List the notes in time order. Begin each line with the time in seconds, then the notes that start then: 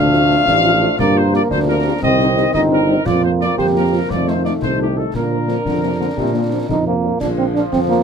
Already playing: D2 F3 A3 D4 F5
0.13 F3 A3 F4, snare
0.30 F3 A3 F4, snare
0.47 A1 D4, concert bass drum, snare
0.64 F3 A3 F4
0.81 F3 A3 F4
0.98 G2 A#3 D5, concert bass drum, snare
1.16 G3 A#3 F4 C5
1.32 G3 A#3 F4 D5, snare
1.51 D2 D4 C5, concert bass drum, snare
1.67 G3 A#3 F4 A#4
1.84 G3 A#3 F4
2.02 C2 D#3 C4 D#5, concert bass drum, snare
2.20 G3 C4 D#4, snare
2.36 G3 C4 D#4, snare
2.54 G1 D#4 D#5, concert bass drum, snare
2.71 G3 C4 D#4 A#4
2.89 G3 C4 D#4
3.05 F2 F3 A#3 F4 D5, concert bass drum, snare, crash
3.23 F3 A#3 F4 C5
3.41 F3 A#3 F4 D5, snare
3.58 F2 G4 C5, concert bass drum, snare
3.75 F3 A#3 F4 A#4
3.92 F3 A#3 F4
4.09 F2 D#3 A3 F4 D5, concert bass drum, snare
4.27 F3 A3 D#4 C5, snare
4.44 F3 A3 D#4 D5, snare
4.62 C2 C5, concert bass drum, snare
4.79 F3 A3 D#4 G4
4.96 F3 A3 D#4 A4
5.13 A#2 D3 A#3 D4 A#4, concert bass drum, snare
5.31 F3 A#3 D4
5.48 F3 A#3 D4, snare
5.64 F2 D3, concert bass drum, snare
5.83 C3 F3 A#3 D4
5.99 D3 F3 A#3 D4
6.17 A#2 C3, concert bass drum, snare
6.34 A#2 F3 A#3 D4
6.52 F3 A#3 D4
6.69 F2 D3 D#4, concert bass drum, snare
6.85 C3 F3 A#3 D4
7.02 A#2 F3 A#3 D4
7.20 A#1 F3 D4, concert bass drum, snare, crash
7.38 F3 A#3 C4 D4 F5
7.54 F3 A#3 D4 F5, snare
7.72 F2 C4, concert bass drum, snare
7.89 F3 A#3 D4 F5